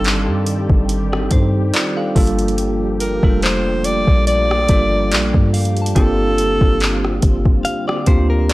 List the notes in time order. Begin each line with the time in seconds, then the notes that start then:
Already playing: G1 D#3 G3 C4 D4 D#4 G4 A4 D5 F5 G5 A5 C6
0.04 clap, closed hi-hat
0.27 G2
0.46 closed hi-hat
0.70 G1, kick
0.89 closed hi-hat
1.12 C4 A4, cross-stick
1.31 G2 D#4 C5, kick, closed hi-hat
1.74 F4 D5, clap, closed hi-hat
1.97 A4 F5
2.16 G1 F3 G3 A#3 D4 F4 A4, kick, closed hi-hat, open hi-hat
2.27 closed hi-hat
2.39 closed hi-hat
2.48 closed hi-hat
2.58 closed hi-hat
3.00 A#4, closed hi-hat
3.23 F1 G3 A3 D4 F4 A4, kick
3.30 A#3
3.42 C5, clap, closed hi-hat
3.84 D5, closed hi-hat
4.08 A#1, kick
4.27 D5, closed hi-hat
4.51 cross-stick
4.69 G1 G3 A#3 D4 F4 A4, kick, closed hi-hat
5.12 A#1, clap, closed hi-hat
5.34 G2, kick
5.53 F5, closed hi-hat, open hi-hat
5.65 closed hi-hat
5.77 closed hi-hat
5.81 A5
5.86 closed hi-hat
5.95 G1 D3 G3 A#3 C4 D4 F4 G4 A4, kick, closed hi-hat
6.38 closed hi-hat
6.61 G1, kick
6.80 clap, closed hi-hat
7.04 cross-stick
7.22 G1, kick, closed hi-hat
7.46 kick
7.65 F5, closed hi-hat
7.88 D5, cross-stick
8.06 D2 A#3 C4 D4 F4 G4 C5, kick, closed hi-hat
8.30 A#4
8.49 D#2 A#3 F#4 D5, closed hi-hat